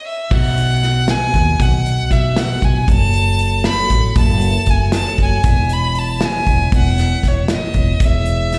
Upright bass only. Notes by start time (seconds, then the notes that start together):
0.31 B1
1.34 D#2
1.59 B1
2.11 B1
2.62 B1
2.88 F#1
3.91 A1
4.16 F#1
4.67 F#1
5.18 F#1
5.44 E1
6.47 E1
6.72 E1
7.23 E1
7.74 E1
8.00 E1